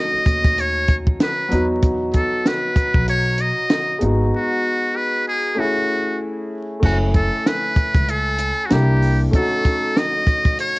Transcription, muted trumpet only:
0, 0, Header, 1, 2, 480
1, 0, Start_track
1, 0, Tempo, 625000
1, 1402, Time_signature, 4, 2, 24, 8
1, 8287, End_track
2, 0, Start_track
2, 0, Title_t, "Muted trumpet"
2, 0, Program_c, 0, 59
2, 0, Note_on_c, 0, 75, 91
2, 464, Note_on_c, 0, 73, 100
2, 475, Note_off_c, 0, 75, 0
2, 731, Note_off_c, 0, 73, 0
2, 941, Note_on_c, 0, 71, 81
2, 1287, Note_off_c, 0, 71, 0
2, 1648, Note_on_c, 0, 69, 72
2, 1901, Note_on_c, 0, 71, 83
2, 1912, Note_off_c, 0, 69, 0
2, 2371, Note_off_c, 0, 71, 0
2, 2376, Note_on_c, 0, 73, 94
2, 2619, Note_on_c, 0, 75, 95
2, 2631, Note_off_c, 0, 73, 0
2, 3091, Note_off_c, 0, 75, 0
2, 3339, Note_on_c, 0, 66, 86
2, 3811, Note_on_c, 0, 71, 92
2, 3823, Note_off_c, 0, 66, 0
2, 4047, Note_off_c, 0, 71, 0
2, 4053, Note_on_c, 0, 68, 93
2, 4295, Note_on_c, 0, 66, 83
2, 4306, Note_off_c, 0, 68, 0
2, 4768, Note_off_c, 0, 66, 0
2, 5256, Note_on_c, 0, 66, 81
2, 5361, Note_off_c, 0, 66, 0
2, 5491, Note_on_c, 0, 69, 78
2, 5737, Note_on_c, 0, 71, 85
2, 5749, Note_off_c, 0, 69, 0
2, 6219, Note_on_c, 0, 69, 100
2, 6230, Note_off_c, 0, 71, 0
2, 6650, Note_on_c, 0, 66, 65
2, 6662, Note_off_c, 0, 69, 0
2, 6699, Note_on_c, 0, 67, 81
2, 6710, Note_off_c, 0, 66, 0
2, 7072, Note_off_c, 0, 67, 0
2, 7182, Note_on_c, 0, 69, 98
2, 7664, Note_on_c, 0, 75, 92
2, 7676, Note_off_c, 0, 69, 0
2, 8133, Note_off_c, 0, 75, 0
2, 8144, Note_on_c, 0, 73, 104
2, 8287, Note_off_c, 0, 73, 0
2, 8287, End_track
0, 0, End_of_file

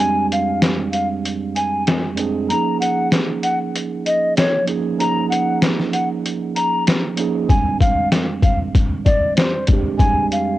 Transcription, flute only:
0, 0, Header, 1, 2, 480
1, 0, Start_track
1, 0, Time_signature, 4, 2, 24, 8
1, 0, Tempo, 625000
1, 8129, End_track
2, 0, Start_track
2, 0, Title_t, "Flute"
2, 0, Program_c, 0, 73
2, 0, Note_on_c, 0, 80, 110
2, 205, Note_off_c, 0, 80, 0
2, 251, Note_on_c, 0, 77, 80
2, 460, Note_off_c, 0, 77, 0
2, 707, Note_on_c, 0, 77, 76
2, 829, Note_off_c, 0, 77, 0
2, 1195, Note_on_c, 0, 80, 89
2, 1411, Note_off_c, 0, 80, 0
2, 1913, Note_on_c, 0, 82, 97
2, 2131, Note_off_c, 0, 82, 0
2, 2151, Note_on_c, 0, 78, 89
2, 2369, Note_off_c, 0, 78, 0
2, 2635, Note_on_c, 0, 78, 89
2, 2754, Note_off_c, 0, 78, 0
2, 3117, Note_on_c, 0, 75, 80
2, 3333, Note_off_c, 0, 75, 0
2, 3351, Note_on_c, 0, 73, 91
2, 3569, Note_off_c, 0, 73, 0
2, 3837, Note_on_c, 0, 82, 103
2, 4053, Note_off_c, 0, 82, 0
2, 4068, Note_on_c, 0, 78, 78
2, 4288, Note_off_c, 0, 78, 0
2, 4550, Note_on_c, 0, 78, 73
2, 4671, Note_off_c, 0, 78, 0
2, 5037, Note_on_c, 0, 82, 89
2, 5252, Note_off_c, 0, 82, 0
2, 5753, Note_on_c, 0, 80, 101
2, 5970, Note_off_c, 0, 80, 0
2, 5995, Note_on_c, 0, 77, 89
2, 6212, Note_off_c, 0, 77, 0
2, 6474, Note_on_c, 0, 77, 83
2, 6593, Note_off_c, 0, 77, 0
2, 6952, Note_on_c, 0, 74, 88
2, 7170, Note_off_c, 0, 74, 0
2, 7192, Note_on_c, 0, 72, 87
2, 7410, Note_off_c, 0, 72, 0
2, 7665, Note_on_c, 0, 80, 106
2, 7886, Note_off_c, 0, 80, 0
2, 7929, Note_on_c, 0, 77, 77
2, 8129, Note_off_c, 0, 77, 0
2, 8129, End_track
0, 0, End_of_file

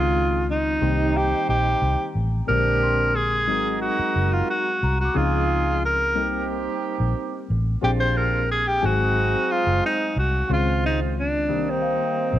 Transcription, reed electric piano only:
0, 0, Header, 1, 2, 480
1, 0, Start_track
1, 0, Key_signature, -3, "minor"
1, 0, Tempo, 667408
1, 1788, Time_signature, 4, 2, 24, 8
1, 8911, End_track
2, 0, Start_track
2, 0, Title_t, "Reed electric piano"
2, 0, Program_c, 0, 4
2, 0, Control_c, 0, 64, 127
2, 0, Note_on_c, 0, 51, 74
2, 0, Note_on_c, 0, 56, 75
2, 0, Note_on_c, 0, 60, 70
2, 0, Note_on_c, 0, 61, 70
2, 0, Note_on_c, 0, 65, 83
2, 491, Note_off_c, 0, 51, 0
2, 493, Note_off_c, 0, 56, 0
2, 493, Note_off_c, 0, 60, 0
2, 494, Note_off_c, 0, 61, 0
2, 518, Note_off_c, 0, 65, 0
2, 581, Note_on_c, 0, 51, 68
2, 585, Note_on_c, 0, 55, 63
2, 585, Note_on_c, 0, 58, 65
2, 586, Note_on_c, 0, 60, 60
2, 589, Note_on_c, 0, 67, 77
2, 600, Control_c, 0, 64, 0
2, 747, Control_c, 0, 64, 127
2, 1352, Note_off_c, 0, 51, 0
2, 1354, Note_off_c, 0, 55, 0
2, 1354, Note_off_c, 0, 58, 0
2, 1355, Note_off_c, 0, 60, 0
2, 1356, Note_off_c, 0, 67, 0
2, 1777, Note_on_c, 0, 50, 66
2, 1777, Note_on_c, 0, 56, 63
2, 1781, Note_on_c, 0, 58, 67
2, 1783, Note_on_c, 0, 60, 66
2, 1785, Note_on_c, 0, 67, 80
2, 1796, Control_c, 0, 64, 0
2, 1941, Control_c, 0, 64, 127
2, 2410, Note_off_c, 0, 50, 0
2, 2410, Note_off_c, 0, 56, 0
2, 2412, Note_off_c, 0, 58, 0
2, 2413, Note_off_c, 0, 60, 0
2, 2414, Note_off_c, 0, 67, 0
2, 2495, Note_on_c, 0, 54, 71
2, 2497, Note_on_c, 0, 56, 62
2, 2498, Note_on_c, 0, 60, 69
2, 2502, Note_on_c, 0, 63, 69
2, 2503, Note_on_c, 0, 68, 76
2, 2517, Control_c, 0, 64, 0
2, 2664, Control_c, 0, 64, 127
2, 3270, Note_off_c, 0, 54, 0
2, 3271, Note_off_c, 0, 56, 0
2, 3271, Note_off_c, 0, 60, 0
2, 3273, Note_off_c, 0, 63, 0
2, 3274, Note_off_c, 0, 68, 0
2, 3700, Note_on_c, 0, 53, 75
2, 3702, Note_on_c, 0, 60, 67
2, 3705, Note_on_c, 0, 61, 67
2, 3706, Note_on_c, 0, 63, 69
2, 3707, Note_on_c, 0, 68, 80
2, 3718, Control_c, 0, 64, 0
2, 3855, Control_c, 0, 64, 127
2, 4332, Note_off_c, 0, 53, 0
2, 4333, Note_off_c, 0, 60, 0
2, 4335, Note_off_c, 0, 61, 0
2, 4335, Note_off_c, 0, 63, 0
2, 4336, Note_off_c, 0, 68, 0
2, 4421, Note_on_c, 0, 55, 73
2, 4426, Note_on_c, 0, 58, 67
2, 4426, Note_on_c, 0, 60, 65
2, 4428, Note_on_c, 0, 63, 70
2, 4429, Note_on_c, 0, 69, 58
2, 4438, Control_c, 0, 64, 0
2, 4476, Note_off_c, 0, 69, 0
2, 4563, Control_c, 0, 64, 127
2, 5194, Note_off_c, 0, 55, 0
2, 5196, Note_off_c, 0, 58, 0
2, 5196, Note_off_c, 0, 60, 0
2, 5197, Note_off_c, 0, 63, 0
2, 5622, Note_on_c, 0, 67, 75
2, 5624, Note_on_c, 0, 58, 68
2, 5628, Note_on_c, 0, 60, 73
2, 5630, Note_on_c, 0, 68, 83
2, 5631, Note_on_c, 0, 62, 74
2, 5639, Control_c, 0, 64, 0
2, 5769, Control_c, 0, 64, 127
2, 6254, Note_off_c, 0, 67, 0
2, 6255, Note_off_c, 0, 58, 0
2, 6257, Note_off_c, 0, 60, 0
2, 6258, Note_off_c, 0, 62, 0
2, 6258, Note_off_c, 0, 68, 0
2, 6344, Note_on_c, 0, 54, 75
2, 6345, Note_on_c, 0, 56, 65
2, 6346, Note_on_c, 0, 63, 74
2, 6347, Note_on_c, 0, 60, 60
2, 6351, Note_on_c, 0, 68, 79
2, 6361, Control_c, 0, 64, 0
2, 6480, Control_c, 0, 64, 127
2, 7115, Note_off_c, 0, 54, 0
2, 7116, Note_off_c, 0, 56, 0
2, 7117, Note_off_c, 0, 60, 0
2, 7117, Note_off_c, 0, 63, 0
2, 7119, Note_off_c, 0, 68, 0
2, 7548, Note_on_c, 0, 51, 72
2, 7551, Note_on_c, 0, 56, 70
2, 7554, Note_on_c, 0, 60, 70
2, 7555, Note_on_c, 0, 61, 71
2, 7555, Note_on_c, 0, 65, 91
2, 7560, Control_c, 0, 64, 0
2, 7681, Control_c, 0, 64, 127
2, 8176, Note_off_c, 0, 51, 0
2, 8178, Note_off_c, 0, 56, 0
2, 8180, Note_off_c, 0, 60, 0
2, 8180, Note_off_c, 0, 61, 0
2, 8180, Note_off_c, 0, 65, 0
2, 8263, Note_on_c, 0, 51, 75
2, 8264, Note_on_c, 0, 55, 66
2, 8266, Note_on_c, 0, 58, 60
2, 8266, Note_on_c, 0, 60, 66
2, 8269, Note_on_c, 0, 67, 73
2, 8280, Control_c, 0, 64, 0
2, 8425, Control_c, 0, 64, 127
2, 8911, Note_off_c, 0, 51, 0
2, 8911, Note_off_c, 0, 55, 0
2, 8911, Note_off_c, 0, 58, 0
2, 8911, Note_off_c, 0, 60, 0
2, 8911, Note_off_c, 0, 67, 0
2, 8911, End_track
0, 0, End_of_file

